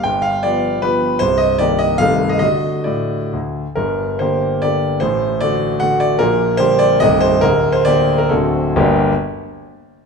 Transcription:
X:1
M:3/4
L:1/16
Q:1/4=145
K:Gm
V:1 name="Grand piano"
g2 f2 d4 =B4 | c2 e2 d2 e2 f3 e | e4 d4 z4 | B4 c4 d4 |
c4 d4 ^f2 d2 | B4 c2 d2 e2 c2 | B3 c d3 B A4 | [G,,,D,,G,B,DGB]2 z8 z2 |]
V:2 name="Grand piano" clef=bass
[G,,,G,,]4 [F,=B,G]4 [F,B,G]4 | [C,,,C,,]4 [E,B,G]4 [C,,,C,,E,A,A]4 | [D,A,^F]4 A,,4 D,,4 | [G,,,G,,]4 [D,B,G]4 [D,B,G]4 |
[A,,,A,,]4 [D,A,^F]4 [D,A,F]4 | [B,,,B,,]4 [D,G,G]4 [C,,,C,,E,A,G]4 | [D,,,D,,]4 [D,B,G]4 [D,,,D,,D,C^F]4 | z12 |]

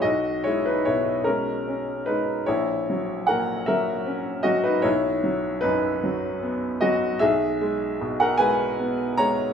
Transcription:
X:1
M:6/8
L:1/16
Q:3/8=51
K:B
V:1 name="Upright piano"
[Fd]2 [Ec] [DB] [Ec]2 [CA]4 [DB]2 | [Ec]4 [Af]2 [Ae]4 [Fd] [DB] | [Ec]4 [DB]2 z4 [Fd]2 | [Ge]4- [Ge] [Af] [Bg]4 [ca]2 |]
V:2 name="Upright piano" clef=bass
B,,,2 G,2 B,,2 G,2 C2 G,2 | A,,,2 F,2 A,,2 F,2 C2 F,2 | B,,,2 F,2 F,,2 F,2 B,2 F,2 | B,,,2 G,2 B,,2 G,2 B,2 G,2 |]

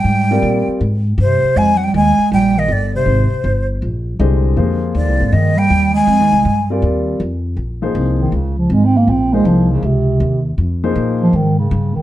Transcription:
X:1
M:4/4
L:1/16
Q:"Swing" 1/4=160
K:Fdor
V:1 name="Flute"
g6 z6 c4 | a3/2 _g/2 =g2 a4 g2 e2 d2 c2- | c6 z8 z2 | z4 d4 e2 g4 a2- |
a6 z8 z2 | [K:Bbdor] z16 | z16 | z16 |]
V:2 name="Grand piano"
z2 [G,CFBd]6 z8 | z16 | z12 [D,A,Gce]4 | [F,B,FAc]8- [F,B,FAc]2 z6 |
z6 [G,CFBd]6 z4 | [K:Bbdor] z2 [F,B,EAc]6 z8 | z2 [F,B,EAc]6 z8 | z2 [F,B,EAc]6 z8 |]
V:3 name="Bass clarinet" clef=bass
G,6 z6 C,4 | A,3/2 _G,/2 =G,2 A,4 G,2 E,2 D,2 C,2- | C,6 z8 z2 | z4 D,4 E,2 G,4 A,2- |
A,6 z8 z2 | [K:Bbdor] z6 E,2 D,2 F,2 (3A,2 C2 B,2 | C2 A,2 F,2 D,2 C,6 z2 | z6 F,2 E,2 D,4 E,2 |]
V:4 name="Upright bass" clef=bass
A,,4 B,,2 z2 A,,4 G,,2 z2 | F,,4 E,,2 z2 B,,,4 G,,,4 | A,,,2 z2 G,,,4 B,,,4 C,,4 | F,,4 (3E,,2 C,,2 A,,,2 G,,4 E,,4 |
(3F,,2 E,,2 C,,2 G,,4 E,,4 F,,4 | [K:Bbdor] B,,,4 C,,4 D,,4 A,,,4 | B,,,4 C,,4 D,,4 E,,4 | F,,4 B,,4 A,,4 G,,2 z2 |]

